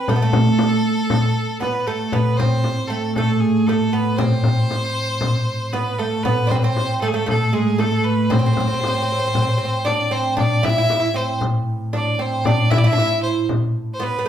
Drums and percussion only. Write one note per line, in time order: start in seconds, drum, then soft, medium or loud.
0.08 frame drum medium
0.33 frame drum loud
0.59 frame drum medium
1.10 frame drum medium
1.62 frame drum medium
2.12 frame drum medium
2.39 frame drum medium
2.64 frame drum medium
3.16 frame drum medium
3.68 frame drum medium
4.18 frame drum medium
4.43 frame drum medium
4.71 frame drum medium
5.21 frame drum medium
5.73 frame drum medium
6.25 frame drum medium
6.50 frame drum medium
6.76 frame drum medium
7.28 frame drum medium
7.79 frame drum medium
8.31 frame drum medium
8.57 frame drum medium
8.83 frame drum medium
9.35 frame drum medium
9.87 frame drum medium
10.38 frame drum medium
10.64 frame drum medium
10.90 frame drum medium
11.41 frame drum medium
11.93 frame drum medium
12.45 frame drum medium
12.71 frame drum medium
12.98 frame drum medium
13.49 frame drum medium
14.00 frame drum medium